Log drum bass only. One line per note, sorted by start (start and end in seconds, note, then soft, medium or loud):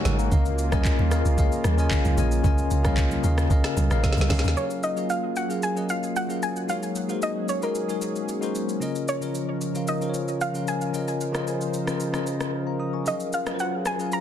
0.05 0.29 G#1 loud
0.32 0.74 C#2 loud
0.72 0.96 D#2 medium
0.99 1.23 D#2 medium
1.25 1.49 C#2 medium
1.64 1.88 D#2 loud
2.05 2.16 C#2 medium
2.18 2.42 A#1 loud
2.44 2.68 C#2 loud
2.71 3.18 C#2 loud
3.24 3.48 D#2 loud
3.50 3.63 C#2 loud
3.77 3.89 C#2 medium
3.91 4.02 A#1 medium
4.17 4.29 C#2 loud
4.30 4.42 C#2 loud
4.44 4.55 D#2 loud